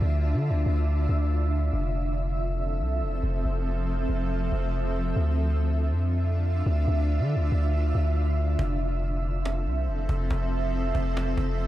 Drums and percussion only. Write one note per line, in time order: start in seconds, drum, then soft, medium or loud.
8.59 cajon bass loud
8.81 cajon slap soft
9.02 cajon slap soft
9.23 cajon slap soft
9.46 cajon slap loud
9.66 cajon slap soft
9.88 cajon slap soft
10.09 cajon bass medium
10.31 cajon bass loud
10.52 cajon slap soft
10.74 cajon slap soft
10.95 cajon bass medium
11.17 cajon slap loud
11.38 cajon bass medium
11.59 cajon slap soft